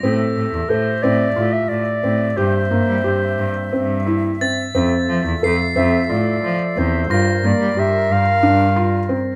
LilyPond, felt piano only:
\new Staff \with { instrumentName = "Felt piano" } { \time 7/8 \key f \major \tempo 4 = 89 c'4 a'8 c'8 f'4 c'8 | g'8 bes8 g'4 c'8 e'8 c'8 | c'4 a'8 c'8 f'4 c'8 | f'8 bes8 g'4 d'8 f'8 c'8 | }